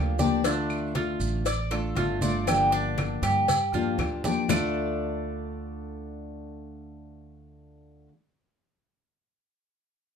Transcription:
0.00 1.13 D2 loud
0.00 0.18 F3 medium
0.00 0.18 A#3 medium
0.00 0.19 D4 medium
0.00 0.18 F4 medium
0.00 0.18 G4 medium
0.19 0.44 F3 medium
0.19 0.44 A#3 medium
0.19 0.44 D4 medium
0.19 0.44 G4 medium
0.19 0.44 D5 medium
0.19 high conga medium
0.19 maracas medium
0.44 1.45 D3 medium
0.44 1.45 A3 medium
0.44 0.94 D4 medium
0.44 1.47 D4 medium
0.44 1.47 F4 medium
0.44 cowbell loud
0.44 high conga soft
0.44 maracas loud
0.70 high conga soft
0.70 claves medium
0.70 maracas soft
0.95 1.44 F4 medium
0.95 cowbell medium
0.95 high conga loud
0.95 maracas soft
1.20 1.92 A1 loud
1.20 high conga soft
1.20 maracas medium
1.46 1.71 D5 medium
1.46 muted steel-string acoustic guitar stroke medium
1.46 cowbell loud
1.46 high conga soft
1.46 maracas medium
1.71 1.96 A3 medium
1.71 1.96 D4 medium
1.71 1.96 F4 medium
1.71 1.96 A4 medium
1.71 cowbell medium
1.71 high conga soft
1.71 claves medium
1.71 maracas soft
1.95 3.16 G1 loud
1.95 2.21 D3 medium
1.95 2.21 A3 medium
1.95 2.21 D4 medium
1.95 2.21 F4 medium
1.95 2.20 F4 medium
1.95 cowbell medium
1.95 high conga medium
1.95 maracas soft
2.21 2.47 A3 medium
2.21 2.46 D4 medium
2.21 2.46 F4 medium
2.21 2.46 D5 medium
2.21 high conga medium
2.21 maracas medium
2.47 3.47 D3 medium
2.47 3.47 F3 medium
2.47 3.48 A#3 medium
2.47 3.48 D4 medium
2.47 2.72 G4 medium
2.47 3.48 G4 medium
2.47 cowbell loud
2.47 high conga soft
2.47 claves medium
2.47 maracas medium
2.72 3.22 D4 loud
2.72 high conga soft
2.72 maracas soft
2.98 cowbell medium
2.98 high conga medium
2.98 claves medium
2.98 maracas soft
3.22 3.95 G2 medium
3.22 3.72 G4 medium
3.22 cowbell medium
3.22 high conga soft
3.22 maracas medium
3.48 muted steel-string acoustic guitar stroke medium
3.48 cowbell loud
3.48 high conga medium
3.48 maracas medium
3.73 3.98 F3 medium
3.73 3.99 A#3 medium
3.73 3.99 D4 medium
3.73 4.23 F4 medium
3.73 3.98 G4 medium
3.73 low conga medium
3.73 maracas soft
3.98 4.43 D2 medium
3.98 4.24 F3 soft
3.98 4.24 A#3 soft
3.98 4.24 D4 medium
3.98 4.23 G4 medium
3.98 cowbell medium
3.98 low conga medium
3.98 claves medium
3.98 maracas soft
4.24 4.49 F3 medium
4.24 4.49 A#3 medium
4.24 4.49 D4 medium
4.24 4.49 G4 medium
4.24 4.49 D5 medium
4.24 low conga loud
4.24 maracas medium
4.48 8.06 D2 medium
4.48 8.11 D3 medium
4.48 8.12 A3 medium
4.48 8.07 D4 medium
4.48 8.13 D4 medium
4.48 8.14 F4 medium
4.48 8.08 A4 medium
4.48 8.08 D5 medium
4.48 low bongo loud
4.48 low conga loud
4.48 claves loud
4.48 maracas loud

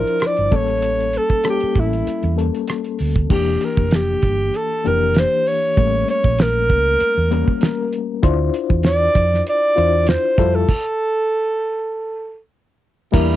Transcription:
0.00 0.55 F3 medium
0.00 0.55 D4 medium
0.00 0.56 E4 medium
0.00 0.55 F4 medium
0.00 0.28 A#4 medium
0.00 0.56 C5 medium
0.07 closed hi-hat soft
0.20 cross-stick loud
0.20 closed hi-hat medium
0.27 0.57 D5 medium
0.37 0.52 G1 medium
0.37 closed hi-hat soft
0.51 1.16 A1 medium
0.51 1.35 G3 medium
0.51 1.35 A#3 medium
0.51 1.35 C#4 medium
0.51 1.35 A4 medium
0.51 kick medium
0.51 closed hi-hat medium
0.56 1.19 C#5 loud
0.68 closed hi-hat soft
0.82 closed hi-hat medium
1.00 closed hi-hat soft
1.13 closed hi-hat medium
1.17 1.47 A4 medium
1.30 kick medium
1.30 closed hi-hat soft
1.43 2.27 G3 medium
1.43 2.28 A#3 medium
1.43 2.28 C#4 medium
1.43 2.28 A4 medium
1.43 cross-stick loud
1.43 closed hi-hat medium
1.50 1.81 G4 medium
1.60 muted fingered electric bass stroke soft
1.60 closed hi-hat soft
1.75 2.01 A1 medium
1.75 kick medium
1.75 closed hi-hat medium
1.79 2.40 E4 medium
1.93 closed hi-hat medium
2.07 closed hi-hat medium
2.23 2.49 E2 medium
2.23 closed hi-hat soft
2.36 3.20 G3 medium
2.36 3.20 A#3 medium
2.36 3.20 C#4 soft
2.36 3.20 A4 medium
2.36 closed hi-hat medium
2.54 closed hi-hat soft
2.67 cross-stick medium
2.67 closed hi-hat medium
2.84 closed hi-hat soft
2.99 3.25 D2 medium
2.99 open hi-hat medium
3.16 kick medium
3.16 closed hi-hat soft
3.29 3.55 E1 medium
3.29 4.40 E3 medium
3.29 4.40 A#3 medium
3.29 4.40 D4 medium
3.29 4.41 G4 medium
3.29 3.66 G4 medium
3.29 kick loud
3.29 crash loud
3.61 closed hi-hat medium
3.65 3.97 A#4 medium
3.77 4.14 F1 medium
3.77 kick medium
3.91 snare loud
3.91 closed hi-hat medium
3.95 4.58 G4 medium
4.22 4.48 G1 medium
4.22 kick medium
4.22 closed hi-hat medium
4.54 4.89 A4 medium
4.54 closed hi-hat medium
4.84 5.24 F1 medium
4.84 5.67 E3 medium
4.84 5.67 A#3 medium
4.84 5.67 D4 medium
4.84 5.68 G4 medium
4.84 5.20 A#4 medium
4.84 closed hi-hat medium
5.14 snare loud
5.14 closed hi-hat medium
5.19 5.49 C5 medium
5.46 6.08 C#5 loud
5.46 open hi-hat medium
5.77 6.02 A1 medium
5.77 6.87 G3 medium
5.77 6.87 A3 medium
5.77 6.87 A#3 medium
5.77 6.87 C#4 medium
5.77 kick loud
5.77 closed hi-hat medium
6.08 6.43 C#5 medium
6.08 closed hi-hat medium
6.24 6.70 A#1 medium
6.24 kick medium
6.38 7.94 A#4 medium
6.38 snare loud
6.38 closed hi-hat medium
6.69 6.95 C#2 medium
6.69 kick medium
6.69 closed hi-hat medium
7.00 muted fingered electric bass stroke soft
7.00 closed hi-hat medium
7.18 7.42 E2 medium
7.31 8.13 G3 medium
7.31 8.13 A#3 medium
7.31 8.13 C#4 medium
7.31 8.14 A#4 medium
7.31 closed hi-hat medium
7.48 kick medium
7.61 snare loud
7.61 closed hi-hat medium
7.93 closed hi-hat medium
8.23 8.48 D2 loud
8.23 9.33 D4 medium
8.23 9.33 E4 medium
8.23 9.32 F4 medium
8.23 9.33 C5 loud
8.23 kick loud
8.23 closed hi-hat medium
8.54 closed hi-hat medium
8.70 9.07 E2 medium
8.70 kick loud
8.83 9.43 D5 loud
8.83 snare loud
8.83 closed hi-hat medium
9.15 9.40 F2 medium
9.15 kick medium
9.15 closed hi-hat medium
9.34 snare soft
9.47 10.10 D5 loud
9.47 closed hi-hat medium
9.76 10.16 E2 medium
9.76 10.38 D4 medium
9.76 10.37 E4 medium
9.76 10.38 F4 medium
9.76 10.38 C5 medium
9.76 closed hi-hat medium
10.07 10.57 C5 medium
10.07 snare loud
10.07 closed hi-hat medium
10.38 10.63 F2 medium
10.38 10.65 G3 medium
10.38 10.65 E4 medium
10.38 10.66 F4 medium
10.38 10.66 A4 medium
10.38 kick loud
10.38 closed hi-hat medium
10.55 12.39 A4 medium
10.69 kick loud
10.69 crash medium
13.12 13.36 E2 loud
13.12 13.36 A#2 medium
13.12 13.36 G3 medium
13.12 13.36 A#3 medium
13.12 13.36 D4 medium
13.12 13.36 E4 medium
13.12 13.36 A#4 loud
13.12 kick loud
13.12 crash loud
13.32 closed hi-hat medium

